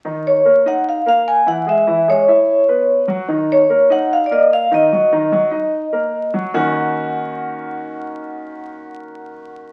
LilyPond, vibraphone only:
\new Staff \with { instrumentName = "Vibraphone" } { \time 4/4 \key ees \minor \tempo 4 = 148 r8 des''4 ges''8 f''8 f''8 aes''8 ges''8 | e''4 cis''2~ cis''8 r8 | r8 des''4 ges''8 f''16. d''32 ees''8 f''8 ees''8~ | ees''2.~ ees''8 r8 |
ges''1~ | ges''1 | }